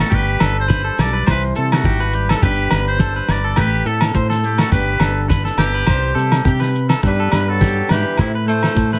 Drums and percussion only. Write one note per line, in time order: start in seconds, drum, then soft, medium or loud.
0.11 kick medium
0.11 shekere medium
0.40 snare medium
0.40 low agogo medium
0.40 shekere medium
0.69 kick medium
0.69 snare medium
0.69 shekere loud
0.98 snare medium
0.98 low agogo medium
0.98 shekere medium
1.27 kick medium
1.27 snare medium
1.27 low agogo medium
1.27 shekere medium
1.56 shekere medium
1.72 snare medium
1.72 low agogo medium
1.84 kick medium
1.84 shekere medium
2.13 shekere medium
2.29 snare medium
2.29 low agogo medium
2.42 kick medium
2.42 shekere loud
2.71 snare medium
2.71 low agogo medium
2.71 shekere medium
2.99 kick medium
2.99 snare medium
2.99 shekere medium
3.28 snare medium
3.28 low agogo medium
3.28 shekere medium
3.56 kick medium
3.56 snare medium
3.56 low agogo medium
3.56 shekere loud
3.86 shekere medium
4.01 snare medium
4.01 low agogo medium
4.14 kick medium
4.14 shekere medium
4.30 snare soft
4.43 shekere medium
4.58 snare medium
4.58 low agogo medium
4.71 kick medium
4.71 snare soft
4.71 shekere medium
5.00 snare medium
5.00 low agogo medium
5.00 shekere medium
5.30 kick medium
5.30 snare medium
5.30 shekere loud
5.45 snare soft
5.58 snare medium
5.58 low agogo medium
5.58 shekere medium
5.87 kick medium
5.87 snare medium
5.87 low agogo medium
5.87 shekere loud
6.18 shekere medium
6.32 snare medium
6.32 low agogo medium
6.45 kick medium
6.45 shekere loud
6.61 snare soft
6.75 shekere medium
6.90 snare medium
6.90 low agogo medium
7.03 kick medium
7.03 shekere medium
7.32 snare medium
7.32 low agogo medium
7.32 shekere medium
7.61 kick medium
7.61 snare medium
7.61 shekere medium
7.89 snare medium
7.89 low agogo medium
7.89 shekere medium
8.17 kick medium
8.17 snare medium
8.17 low agogo medium
8.17 shekere medium
8.49 shekere medium
8.63 snare medium
8.63 low agogo medium
8.76 kick medium
8.76 shekere medium
8.93 snare soft